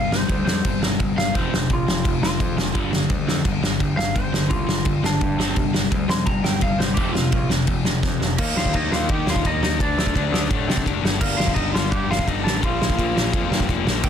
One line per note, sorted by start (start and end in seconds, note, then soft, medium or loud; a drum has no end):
0.00 0.23 G1 loud
0.00 0.11 F5 loud
0.12 0.27 C3 medium
0.12 0.27 G3 medium
0.12 0.44 C5 loud
0.12 snare loud
0.29 0.43 D2 medium
0.29 0.45 C3 medium
0.29 0.45 G3 medium
0.29 kick loud
0.29 crash medium
0.45 0.60 F2 medium
0.45 0.62 C3 medium
0.45 0.62 G3 medium
0.45 0.79 C5 loud
0.45 snare loud
0.65 0.79 G1 medium
0.65 0.80 C3 medium
0.65 0.80 G3 medium
0.65 kick loud
0.65 crash medium
0.81 0.95 G1 loud
0.81 0.98 C3 medium
0.81 0.98 G3 medium
0.81 snare loud
1.00 1.14 G1 medium
1.00 1.15 C3 medium
1.00 1.15 G3 loud
1.00 kick loud
1.00 crash medium
1.17 1.31 G1 medium
1.17 1.32 C3 medium
1.17 1.33 G3 medium
1.17 1.34 F5 medium
1.17 snare loud
1.35 1.49 F1 loud
1.35 1.51 F2 medium
1.35 1.51 C3 medium
1.35 1.51 F3 loud
1.35 1.68 C5 loud
1.35 kick loud
1.35 crash medium
1.52 1.66 F1 medium
1.52 1.68 F2 medium
1.52 1.68 C3 medium
1.52 snare loud
1.70 1.84 A#1 medium
1.70 1.85 F2 medium
1.70 1.85 C3 medium
1.70 2.22 F4 medium
1.70 kick loud
1.70 crash medium
1.87 2.01 F1 medium
1.87 2.03 F2 medium
1.87 2.03 C3 medium
1.87 snare loud
2.05 2.19 F1 medium
2.05 2.20 F2 medium
2.05 2.21 C3 medium
2.05 kick loud
2.05 crash medium
2.22 2.36 F1 loud
2.22 2.38 F2 medium
2.22 2.38 C3 medium
2.22 2.91 F4 loud
2.22 snare loud
2.39 2.55 F2 medium
2.39 2.56 C3 medium
2.39 kick loud
2.39 crash medium
2.56 2.71 F1 medium
2.56 2.73 F2 medium
2.56 2.73 C3 medium
2.56 snare loud
2.74 3.04 G1 loud
2.74 2.91 G2 medium
2.74 2.91 D3 medium
2.74 2.92 G3 loud
2.74 kick loud
2.74 crash medium
2.93 3.08 G2 medium
2.93 3.08 D3 medium
2.93 snare loud
3.10 3.25 D2 medium
3.10 3.26 G2 medium
3.10 3.26 D3 medium
3.10 kick loud
3.10 crash medium
3.27 3.42 F2 medium
3.27 3.43 G2 medium
3.27 3.43 D3 medium
3.27 snare loud
3.45 3.60 G1 medium
3.45 3.61 G2 medium
3.45 3.61 D3 medium
3.45 kick loud
3.45 crash medium
3.62 3.77 G1 loud
3.62 3.79 G2 medium
3.62 3.79 D3 medium
3.62 snare loud
3.80 3.95 G1 medium
3.80 3.96 G2 medium
3.80 3.97 D3 medium
3.80 kick loud
3.80 crash medium
3.97 4.12 G1 medium
3.97 4.14 G2 medium
3.97 4.14 D3 medium
3.97 4.15 F5 medium
3.97 snare loud
4.15 4.30 G1 loud
4.15 4.31 G2 medium
4.15 4.31 D3 medium
4.15 4.49 C5 loud
4.15 kick loud
4.15 crash medium
4.32 4.47 G1 medium
4.32 4.48 G2 medium
4.32 4.49 D3 medium
4.32 snare loud
4.49 4.65 C2 medium
4.49 4.65 G2 medium
4.49 4.66 D3 medium
4.49 5.01 F4 medium
4.49 kick loud
4.49 crash medium
4.67 4.82 G1 medium
4.67 4.84 G2 medium
4.67 4.84 D3 medium
4.67 snare loud
4.85 5.01 G1 medium
4.85 5.02 G2 medium
4.85 5.02 D3 medium
4.85 kick loud
4.85 crash medium
5.02 5.18 G1 medium
5.02 5.19 G2 medium
5.02 5.20 D3 medium
5.02 5.73 D4 loud
5.02 snare loud
5.21 5.37 G2 medium
5.21 5.36 G2 medium
5.21 5.37 D3 medium
5.21 kick loud
5.21 crash medium
5.37 5.52 G1 medium
5.37 5.55 C3 medium
5.37 5.56 G3 loud
5.37 5.56 C4 loud
5.37 snare loud
5.56 5.86 G1 loud
5.56 5.72 C3 medium
5.56 5.73 G3 medium
5.56 kick loud
5.56 crash medium
5.74 5.90 C3 medium
5.74 5.90 G3 medium
5.74 snare loud
5.91 6.06 D2 medium
5.91 6.07 C3 medium
5.91 6.07 G3 loud
5.91 kick loud
5.91 crash medium
6.08 6.23 F2 medium
6.08 6.25 C3 medium
6.08 6.26 G3 medium
6.08 6.25 C6 medium
6.08 snare loud
6.26 6.41 G1 loud
6.26 6.43 C3 medium
6.26 6.43 G3 medium
6.26 6.44 A#5 loud
6.26 kick loud
6.26 crash medium
6.43 6.58 G1 medium
6.43 6.60 C3 medium
6.43 6.61 G3 medium
6.43 6.61 G5 loud
6.43 snare loud
6.61 6.77 G1 medium
6.61 6.78 C3 medium
6.61 6.78 G3 medium
6.61 6.79 F5 medium
6.61 kick loud
6.61 crash medium
6.79 6.94 G1 medium
6.79 6.95 C3 medium
6.79 6.96 G3 medium
6.79 6.96 C5 loud
6.79 snare loud
6.94 7.12 F1 loud
6.94 7.13 F2 medium
6.94 7.13 C3 loud
6.94 7.14 F3 loud
6.94 7.12 G4 loud
6.94 kick loud
6.94 crash medium
7.12 7.29 F1 medium
7.12 7.31 F2 medium
7.12 7.31 C3 medium
7.12 7.48 F4 loud
7.12 snare loud
7.32 7.47 A#1 loud
7.32 7.48 F2 medium
7.32 7.49 C3 medium
7.32 kick loud
7.32 crash medium
7.49 7.64 F1 medium
7.49 7.66 F2 medium
7.49 7.66 C3 medium
7.49 snare loud
7.67 7.82 F1 loud
7.67 7.84 F2 medium
7.67 7.84 C3 medium
7.67 kick loud
7.67 crash medium
7.84 7.99 F1 medium
7.84 8.01 F2 medium
7.84 8.01 C3 medium
7.84 snare loud
8.03 8.19 F2 medium
8.03 8.18 F2 medium
8.03 8.19 C3 loud
8.03 kick loud
8.03 snare medium
8.20 8.35 F1 medium
8.20 8.36 F2 medium
8.20 8.36 C3 medium
8.20 snare medium
8.38 8.55 D#2 medium
8.38 8.55 D#3 medium
8.38 8.55 A#3 medium
8.38 8.55 A#3 loud
8.38 8.56 D#4 loud
8.38 8.57 A#4 medium
8.38 kick loud
8.38 crash loud
8.55 8.72 D#2 medium
8.55 8.72 D#3 medium
8.55 8.73 A#3 medium
8.55 8.73 D#4 medium
8.55 8.73 F4 medium
8.55 8.75 F5 loud
8.55 snare loud
8.65 kick medium
8.73 8.91 D#2 medium
8.73 8.90 D#3 medium
8.73 8.91 A#3 medium
8.73 8.90 D#4 medium
8.73 8.91 D#4 loud
8.73 8.93 D#5 medium
8.73 kick medium
8.73 ride medium
8.91 9.08 D#2 medium
8.91 9.08 D#3 medium
8.91 9.09 A#3 loud
8.91 9.10 D#4 medium
8.91 9.09 F4 medium
8.91 9.08 F5 loud
8.91 snare loud
9.09 9.25 D#3 medium
9.09 9.25 D#3 loud
9.09 9.25 A#3 loud
9.09 9.26 D#4 loud
9.09 9.26 G4 medium
9.09 9.26 G5 medium
9.09 kick loud
9.09 ride medium
9.26 9.43 D#2 loud
9.26 9.43 D#3 medium
9.26 9.43 A#3 medium
9.26 9.44 D#4 medium
9.26 9.45 F4 medium
9.26 9.46 F5 medium
9.26 snare loud
9.36 kick medium
9.44 9.61 D#2 medium
9.44 9.61 D#3 medium
9.44 9.61 A#3 loud
9.44 9.61 D#4 loud
9.44 9.62 D#4 medium
9.44 9.62 D#5 loud
9.44 kick loud
9.44 ride medium
9.62 9.78 D#2 medium
9.62 9.78 D#3 medium
9.62 9.78 A#3 medium
9.62 9.79 D#4 loud
9.62 9.79 D#4 medium
9.62 9.80 D#5 medium
9.62 snare loud
9.80 9.96 D2 loud
9.80 9.97 D3 loud
9.80 9.97 A3 loud
9.80 9.99 D4 loud
9.80 10.82 D4 medium
9.80 10.82 D5 loud
9.80 kick loud
9.80 ride medium
9.98 10.14 D2 medium
9.98 10.13 D3 medium
9.98 10.14 A3 medium
9.98 10.15 D4 medium
9.98 snare loud
10.07 kick medium
10.15 10.31 D2 loud
10.15 10.31 D3 loud
10.15 10.31 A3 medium
10.15 10.33 D4 loud
10.15 kick loud
10.15 ride medium
10.32 10.48 D2 loud
10.32 10.48 D3 medium
10.32 10.49 A3 medium
10.32 10.50 D4 loud
10.32 snare loud
10.50 10.67 A2 medium
10.50 10.67 D3 medium
10.50 10.67 A3 loud
10.50 10.68 D4 loud
10.50 kick loud
10.50 ride medium
10.67 10.84 C3 loud
10.67 10.84 D3 medium
10.67 10.84 A3 medium
10.67 10.86 D4 medium
10.67 snare loud
10.77 kick medium
10.85 11.02 F#1 medium
10.85 11.01 D3 loud
10.85 11.02 A3 medium
10.85 12.62 D4 loud
10.85 kick loud
10.85 ride medium
11.02 11.19 G1 medium
11.02 11.19 G2 loud
11.02 11.20 D3 loud
11.02 11.20 G3 loud
11.02 snare loud
11.20 11.37 G1 loud
11.20 11.37 G2 medium
11.20 11.37 D3 loud
11.20 11.38 G3 loud
11.20 11.38 A#3 medium
11.20 11.37 A#4 loud
11.20 kick loud
11.20 crash loud
11.37 11.55 G1 medium
11.37 11.54 G2 medium
11.37 11.55 D3 medium
11.37 11.55 G3 medium
11.37 11.54 F4 medium
11.37 11.54 F5 loud
11.37 snare loud
11.48 kick medium
11.54 11.72 G1 medium
11.54 11.72 G2 medium
11.54 11.73 D3 medium
11.54 11.74 G3 loud
11.54 11.72 D#4 medium
11.54 11.71 D#5 loud
11.54 kick loud
11.54 ride medium
11.74 11.90 G1 medium
11.74 11.90 G2 medium
11.74 11.91 D3 loud
11.74 11.91 G3 loud
11.74 11.90 F4 medium
11.74 11.91 F5 loud
11.74 snare loud
11.91 12.07 G2 loud
11.91 12.08 G2 loud
11.91 12.08 D3 loud
11.91 12.08 G3 loud
11.91 12.08 G4 medium
11.91 12.09 G5 loud
11.91 kick loud
11.91 ride medium
12.08 12.25 G1 loud
12.08 12.26 G2 medium
12.08 12.26 D3 medium
12.08 12.27 G3 medium
12.08 12.26 F4 medium
12.08 12.27 F5 loud
12.08 snare loud
12.19 kick medium
12.27 12.43 G1 medium
12.27 12.43 G2 medium
12.27 12.44 D3 loud
12.27 12.43 G3 loud
12.27 12.43 D#4 medium
12.27 12.44 D#5 medium
12.27 kick loud
12.27 ride medium
12.43 12.61 A1 loud
12.43 12.60 G2 medium
12.43 12.61 D3 loud
12.43 12.61 G3 loud
12.43 12.60 D4 medium
12.43 12.60 D5 medium
12.43 snare loud
12.61 12.79 A#1 loud
12.61 12.78 A#2 loud
12.61 12.79 F3 loud
12.61 12.80 A#3 loud
12.61 13.65 F4 medium
12.61 kick loud
12.61 ride medium
12.65 13.69 F5 loud
12.79 12.96 A#1 medium
12.79 12.95 A#2 medium
12.79 12.96 F3 medium
12.79 12.97 A#3 medium
12.79 snare loud
12.90 kick loud
12.96 13.14 A#1 loud
12.96 13.13 A#2 medium
12.96 13.14 F3 loud
12.96 13.15 A#3 medium
12.96 kick medium
12.96 ride medium
13.14 13.31 A#1 medium
13.14 13.30 A#2 medium
13.14 13.31 F3 medium
13.14 13.32 A#3 loud
13.14 snare loud
13.32 13.49 F2 loud
13.32 13.49 A#2 medium
13.32 13.50 F3 loud
13.32 13.50 A#3 loud
13.32 kick loud
13.32 ride medium
13.50 13.67 G2 loud
13.50 13.66 A#2 medium
13.50 13.67 F3 medium
13.50 13.67 A#3 medium
13.50 snare loud
13.60 kick medium
13.68 13.85 F1 loud
13.68 13.84 A#2 medium
13.68 13.85 F3 medium
13.68 13.85 A#3 loud
13.68 kick loud
13.68 ride medium
13.86 14.02 A#1 medium
13.86 14.02 A#2 medium
13.86 14.02 F3 medium
13.86 14.02 A#3 medium
13.86 snare loud
14.03 14.09 D#2 loud
14.03 14.09 D#3 loud
14.03 14.09 A#3 loud
14.03 14.09 D#4 loud
14.03 14.09 G5 loud
14.03 kick loud
14.03 crash loud